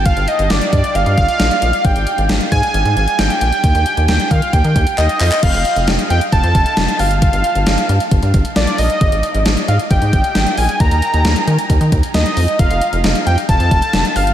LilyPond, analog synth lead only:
\new Staff \with { instrumentName = "Analog synth lead" } { \time 4/4 \key f \mixolydian \tempo 4 = 134 f''8 ees''8 d''8 d''8 f''8 f''4. | g''4 r8 aes''4 aes''8 g''8 g''8 | g''4 g''8 f''8 g''4 ees''4 | f''4 r8 g''8 a''4. f''8 |
f''2 r4 d''8 ees''8~ | ees''4 r8 f''8 g''4. aes''8 | bes''2 r4 ees''4 | f''4 r8 g''8 a''4. f''8 | }